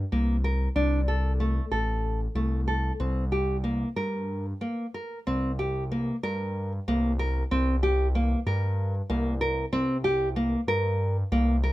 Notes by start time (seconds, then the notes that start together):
0.12 C2 A#3
0.44 A#4
0.76 C2 D4
1.08 A4
1.40 A3
1.72 A1 A4
2.35 C2 A3
2.68 A4
3.00 C2 C4
3.32 G4
3.64 A#3
3.96 G2 A#4
4.61 A#3
4.94 A#4
5.27 C2 C4
5.59 G4
5.92 A#3
6.23 G2 A#4
6.88 C2 A#3
7.19 A#4
7.51 C2 C4
7.83 G4
8.15 A#3
8.46 G2 A#4
9.10 C2 A#3
9.41 A#4
9.72 C2 C4
10.04 G4
10.36 A#3
10.67 G2 A#4
11.32 C2 A#3
11.63 A#4